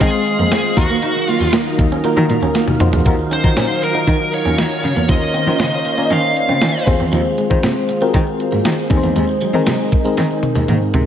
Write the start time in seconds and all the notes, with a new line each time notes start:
Already playing: D#3 G#3 C5 F5
0.00 D#3 G#3 C4 F4 G#4 D#5, kick, closed hi-hat
0.14 muted clean electric guitar stroke
0.27 closed hi-hat
0.39 F2 A#3
0.51 C4 G#4, snare, closed hi-hat, tambourine
0.76 D#2 D#3 F#3 A#3 D#4 F#4 A#4 F5, muted clean electric guitar stroke, kick, open hi-hat
0.91 A#3
1.02 D#4, closed hi-hat
1.16 muted clean electric guitar stroke
1.28 A#3 F4, closed hi-hat
1.41 D#2
1.53 A#3, snare, closed hi-hat, tambourine
1.79 D#2, muted clean electric guitar stroke, kick, closed hi-hat
1.92 C#4
2.04 A#3 D#4 F4 F#4 A#4, closed hi-hat
2.17 D#3, muted clean electric guitar stroke
2.29 A#2, closed hi-hat
2.42 D#2 C#4
2.55 A#3, snare, closed hi-hat
2.67 D#2, high tom
2.80 F2 A#3 D#4 F4 F#4 C5, muted clean electric guitar stroke, closed hi-hat, mid tom
2.93 E2 G#3, floor tom
3.05 D#2 D#3 F#3 D#4 F4 F#4 A#4 F5, kick, closed hi-hat
3.19 muted clean electric guitar stroke
3.31 C#4 C5, closed hi-hat
3.43 D#3 D#4 F4 F#4 A#4, kick
3.56 A#2 C#4, snare, closed hi-hat
3.82 A#4, muted clean electric guitar stroke, closed hi-hat
3.94 D#4 F4 F#4 A#4
4.07 D#3 D#4, kick, closed hi-hat
4.20 muted clean electric guitar stroke
4.33 C#5, closed hi-hat
4.45 D#2 C#4
4.58 D#3 D#4, snare, closed hi-hat
4.83 C#3, muted clean electric guitar stroke, open hi-hat
4.96 E2 A#3
5.08 D#2 D#3 A#3 C#4 F4 A#4 C5 D#5, kick, closed hi-hat
5.21 muted clean electric guitar stroke
5.34 C4, closed hi-hat
5.46 D#3 C#4 F4 A#4 C5
5.59 C#3 C4 D#5, snare, closed hi-hat
5.85 muted clean electric guitar stroke, closed hi-hat
5.98 C#4 F4 A#4 D5
6.05 D#5
6.10 D#3 C#4 F5, closed hi-hat
6.24 muted clean electric guitar stroke
6.37 closed hi-hat
6.49 C#3 C4
6.61 D#3 C#4, snare, closed hi-hat
6.86 D#2 D#3 G#3 C4 F4 G#4 C5, muted clean electric guitar stroke, kick, open hi-hat
6.99 E2 C4
7.12 D#2 F3, closed hi-hat
7.25 muted clean electric guitar stroke
7.38 G#3, closed hi-hat
7.50 D#3 C4 F4 G#4 C5, kick
7.63 C3 A#3, snare, closed hi-hat
7.89 muted clean electric guitar stroke, closed hi-hat
8.01 C4 F4 F#4 A#4
8.08 G#4
8.14 D#3 C4, kick, closed hi-hat
8.27 muted clean electric guitar stroke
8.40 closed hi-hat
8.52 G#2 A#3
8.65 D#3 C4, snare, closed hi-hat
8.90 D#2 D#3 C4 D#4 G#4 A#4, muted clean electric guitar stroke, kick, open hi-hat
8.97 C5
9.03 E2 A#3
9.16 D#2 G#3, closed hi-hat
9.29 muted clean electric guitar stroke
9.41 F#3, closed hi-hat
9.54 D#3 C4 D#4 G#4 A#4
9.66 C3 F#3, snare, closed hi-hat
9.92 muted clean electric guitar stroke, kick, closed hi-hat
10.04 G#3 C4 D#4 G#4 A#4
10.17 D#3 C4, snare, closed hi-hat
10.31 muted clean electric guitar stroke
10.43 closed hi-hat, high tom
10.55 D#2 G#3, high tom
10.68 D#3 A#3, closed hi-hat, mid tom
10.94 C3, muted clean electric guitar stroke, closed hi-hat, floor tom